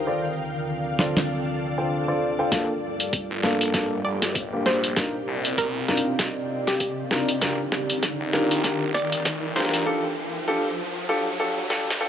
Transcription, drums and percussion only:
0.99 snare soft
1.17 snare medium
2.52 kick loud
2.52 snare soft
2.52 closed hi-hat medium
3.00 closed hi-hat medium
3.13 kick loud
3.13 closed hi-hat medium
3.43 snare soft
3.61 closed hi-hat medium
3.74 kick loud
3.74 snare soft
3.74 closed hi-hat medium
4.22 snare soft
4.22 closed hi-hat medium
4.35 kick loud
4.35 closed hi-hat medium
4.66 snare medium
4.84 closed hi-hat medium
4.96 kick loud
4.96 snare medium
4.96 closed hi-hat medium
5.45 closed hi-hat medium
5.58 kick loud
5.58 closed hi-hat medium
5.88 snare medium
5.97 closed hi-hat medium
6.19 kick medium
6.19 snare medium
6.19 closed hi-hat medium
6.67 snare medium
6.67 closed hi-hat medium
6.80 kick loud
6.80 closed hi-hat medium
7.11 snare medium
7.29 closed hi-hat medium
7.42 kick loud
7.42 snare medium
7.42 closed hi-hat medium
7.72 snare medium
7.90 closed hi-hat medium
8.03 kick loud
8.03 snare medium
8.03 closed hi-hat medium
8.33 snare medium
8.51 closed hi-hat medium
8.64 kick loud
8.64 snare medium
8.64 closed hi-hat medium
8.95 snare medium
9.12 closed hi-hat medium
9.25 kick loud
9.25 snare medium
9.25 closed hi-hat medium
9.56 snare medium
9.60 snare medium
9.65 snare medium
9.69 snare soft
9.74 snare soft
9.74 closed hi-hat medium
9.77 snare soft
9.80 snare soft
9.83 snare soft
11.70 snare medium
11.90 snare medium

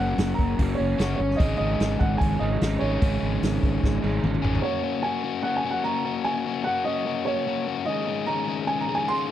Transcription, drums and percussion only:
0.18 snare loud
0.18 open hi-hat medium
0.39 kick medium
0.59 kick medium
0.59 open hi-hat medium
0.99 snare loud
0.99 open hi-hat soft
1.31 snare soft
1.40 kick loud
1.40 open hi-hat medium
1.80 snare loud
1.80 open hi-hat soft
2.01 kick medium
2.21 kick medium
2.21 open hi-hat soft
2.61 snare loud
2.61 open hi-hat medium
3.02 kick loud
3.02 open hi-hat medium
3.43 snare loud
3.43 open hi-hat medium
3.63 kick medium
3.83 kick medium
3.83 snare medium
4.04 high tom medium
4.24 mid tom medium
4.34 mid tom medium
4.44 floor tom medium
4.55 floor tom medium

